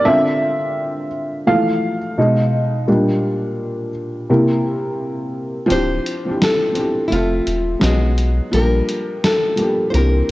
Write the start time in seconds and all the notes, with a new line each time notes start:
0.05 D3 C4 F4 E5
1.47 E3 F3 A3 F5
2.18 B2 G#3 D#4
2.88 A#2 G3 D4
4.29 C3 A#3 E4
5.66 F3 C4 D4
5.70 D1 E4 G4 C5, closed hi-hat
6.06 closed hi-hat
6.25 F3 C4 D4
6.30 E4 G4
6.42 A4, snare, closed hi-hat
6.72 F3 C4 D4, closed hi-hat
6.77 E4 G4
7.08 F1 F3 A3 E4
7.12 C4 F4 A4 E5, closed hi-hat
7.47 E1, closed hi-hat
7.79 B1 F#3 G#3 B3 F#4, snare
7.84 D#4 G#4, closed hi-hat
8.18 closed hi-hat
8.51 A#1 F3 G3 A#3 A#4, closed hi-hat
8.56 D4 G4
8.88 closed hi-hat
9.24 A4, snare, closed hi-hat
9.56 F3 G3 A#3, closed hi-hat
9.61 D4 G4
9.90 C2 E3 A#3 C5, closed hi-hat
9.95 C4 D4 G4 A#4